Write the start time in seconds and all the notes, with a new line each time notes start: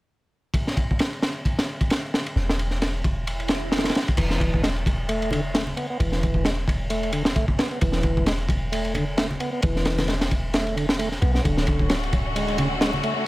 0.54 kick, ride
0.67 snare
0.77 kick, ride
0.91 kick
0.99 snare, ride
1.13 ride
1.22 snare, ride
1.45 kick, ride
1.59 snare, ride
1.81 kick, ride
1.90 snare, ride
2.14 snare
2.26 ride
2.36 E1, snare
2.49 snare
2.59 ride
2.71 snare
2.82 snare, ride
3.04 kick, ride
3.27 ride, swell
3.40 ride
3.48 snare, ride
3.72 snare, ride
3.78 snare, ride
3.84 snare, ride
3.89 snare, ride
3.95 snare, ride
4.08 kick, ride
4.17 E1 E3, kick, crash, ride
4.30 snare
4.40 kick, ride
4.54 kick
4.63 G#3, snare, ride
4.76 ride
4.86 kick, ride
5.09 A3, ride
5.22 ride
5.31 D3, ride, low conga
5.54 A3, snare, ride
5.67 low conga
5.77 B3, ride
5.90 B3
5.99 E1 E3, kick, ride
6.12 snare
6.23 kick, ride
6.34 kick
6.45 G#3, snare, ride
6.68 kick, ride
6.90 A3, ride
7.03 ride
7.12 D3, ride
7.25 snare
7.36 A3, kick, ride
7.48 kick
7.58 B3, snare, ride
7.71 B3, ride
7.81 E1 E3, kick, ride
7.92 snare
8.03 kick, ride
8.17 kick
8.26 G#3, snare, ride
8.38 ride
8.49 kick, ride
8.72 A3, ride
8.85 ride
8.95 D3, ride, low conga
9.17 A3, snare, ride
9.30 low conga
9.40 B3, ride
9.52 B3
9.62 E1 E3, kick, ride
9.76 snare
9.85 snare, ride
9.98 snare, ride, low conga
10.08 G#3, snare, ride
10.21 snare, ride
10.31 kick, ride
10.53 A3, snare, ride
10.67 ride
10.76 D3, ride
10.89 snare
10.99 A3, ride
11.12 snare
11.21 B1 B3, ride
11.34 B3, snare
11.44 D1 D3 A3 C#4 F#4, kick, ride
11.57 snare
11.67 kick, ride
11.79 kick
11.90 F#3, snare, ride
12.03 ride
12.13 kick, ride
12.35 G#3, ride
12.48 ride
12.58 C#3, ride, low conga
12.81 G#3, snare, ride
12.93 low conga
13.03 A3, ride
13.16 A3